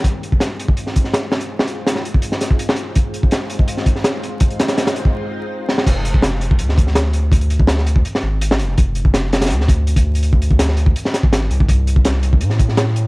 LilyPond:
<<
  \new Staff \with { instrumentName = "Sub bass" } { \clef bass \time 4/4 \key f \dorian \tempo 4 = 165 r1 | r1 | r1 | r1 |
f,,2 d,2~ | d,2 r8 aes,,4 f,,8 | f,,2 d,2~ | d,2 r8. aes,,8. c,8 |
c,2 a,2 | }
  \new DrumStaff \with { instrumentName = "Drums" } \drummode { \time 4/4 <hh bd>8 hh16 bd16 <hh sn>8 hh16 bd16 hh16 sn16 <hh bd>16 sn16 <hh sn>8 sn16 hh16 | r16 sn16 hh8 <hh sn>16 sn16 hh16 bd16 hh16 sn16 <hh sn>16 bd16 hh16 sn16 hh8 | <hh bd>8 hh16 bd16 <hh sn>8 hh16 bd16 hh16 sn16 <hh bd>16 sn16 <hh sn>8 hh8 | <hh bd>16 hh16 <hh sn>16 <hh sn>16 <hh sn>16 <hh sn>16 hh16 bd16 r4 r8 sn16 sn16 |
<cymc hh bd>8 hh16 bd16 <hh sn>8 hh16 bd16 hh16 sn16 <hh bd>16 sn16 <hh sn>8 hh8 | <hh bd>16 hh16 hh16 bd16 <hh sn>16 sn16 hh16 bd16 hh16 sn8. hh16 sn16 hh8 | <hh bd>8 hh16 bd16 <hh sn>8 <hh sn>16 <hh sn>32 <hh sn>32 hh16 sn16 <hh bd>8 hh16 <hh bd>8 hh16 | hh16 bd16 hh16 bd16 <hh sn>16 sn16 hh16 bd16 hh16 sn16 <hh sn>16 bd16 <hh sn>8 hh16 bd16 |
<hh bd>8 hh16 bd16 <hh sn>8 hh16 bd16 hh16 sn16 <hh bd>16 sn16 <hh sn>8 hh8 | }
>>